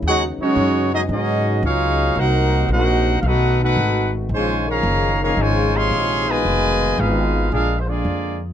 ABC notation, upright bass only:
X:1
M:4/4
L:1/8
Q:"Swing" 1/4=112
K:Bbm
V:1 name="Upright bass" clef=bass
^D,, z ^F,,2 ^G,,2 ^C,,2 | C,,2 B,,,2 =B,,,2 A,,,2 | B,,,2 G,,,2 A,,,2 B,,,2 | F,,,2 A,,,2 B,,,2 F,,2 |]